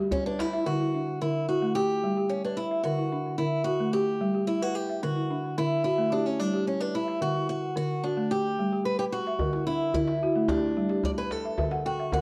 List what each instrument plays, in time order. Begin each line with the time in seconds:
Already playing: balafon G3
0.00 balafon G4
0.12 steel-string acoustic guitar C#4, djembe slap, djembe tone, djembe bass
0.26 steel-string acoustic guitar D4, balafon B4
0.39 steel-string acoustic guitar E4, djembe slap
0.53 balafon E5
0.66 balafon D3, steel-string acoustic guitar F#4
0.80 balafon E4
0.94 balafon D4
1.21 balafon D3, steel-string acoustic guitar E4
1.49 steel-string acoustic guitar F#4, balafon F#4
1.62 balafon A3
1.75 steel-string acoustic guitar G4, balafon G4
2.03 balafon G3
2.17 balafon G4
2.29 steel-string acoustic guitar C#4
2.45 steel-string acoustic guitar D4, balafon B4
2.57 steel-string acoustic guitar E4
2.71 balafon E5
2.84 balafon D3, steel-string acoustic guitar F#4
2.99 balafon E4
3.12 balafon D4
3.38 balafon D3, steel-string acoustic guitar E4
3.64 steel-string acoustic guitar F#4, balafon F#4
3.80 balafon A3
3.93 steel-string acoustic guitar G4, balafon G4
4.21 balafon G3
4.34 balafon G4
4.47 steel-string acoustic guitar E4
4.62 steel-string acoustic guitar F#4, balafon B4
4.75 steel-string acoustic guitar G4
4.89 balafon E5
5.03 balafon D3, steel-string acoustic guitar F#4
5.16 balafon E4
5.30 balafon D4
5.58 balafon D3, steel-string acoustic guitar E4
5.84 steel-string acoustic guitar E4, balafon F#4
5.98 balafon A3
6.12 steel-string acoustic guitar D4, balafon G4
6.26 steel-string acoustic guitar C#4
6.40 balafon G3, steel-string acoustic guitar D4
6.53 balafon G4
6.67 steel-string acoustic guitar C#4
6.80 steel-string acoustic guitar D4, balafon B4
6.95 steel-string acoustic guitar E4
7.08 balafon E5
7.21 balafon D3, steel-string acoustic guitar F#4
7.35 balafon E4
7.49 steel-string acoustic guitar F#4
7.76 balafon D3, steel-string acoustic guitar F#4
8.03 steel-string acoustic guitar D4, balafon F#4
8.17 balafon A3
8.31 steel-string acoustic guitar G4, balafon G4
8.59 balafon G3
8.72 balafon G4
8.85 steel-string acoustic guitar B4
8.99 steel-string acoustic guitar G4, balafon B4
9.12 steel-string acoustic guitar F#4
9.27 balafon E5
9.39 balafon D3, djembe tone, djembe bass
9.53 balafon E4, djembe slap
9.67 balafon D4, steel-string acoustic guitar E4
9.94 balafon D3, steel-string acoustic guitar E4, djembe tone, djembe bass
10.08 djembe slap
10.21 balafon F#4, djembe slap
10.35 balafon A3, djembe slap
10.48 steel-string acoustic guitar D4, balafon G4, djembe slap, djembe tone, djembe bass
10.77 balafon G3
10.89 balafon G4, djembe slap
11.04 steel-string acoustic guitar D5, djembe tone, djembe bass
11.18 steel-string acoustic guitar B4, balafon B4
11.31 steel-string acoustic guitar A4, djembe slap
11.45 balafon E5
11.58 balafon D3 E5, djembe tone, djembe bass
11.71 balafon F#5, djembe slap
11.86 steel-string acoustic guitar F#4, balafon G5
12.00 balafon E5
12.12 balafon D3 F#5, steel-string acoustic guitar F#4, djembe tone, djembe bass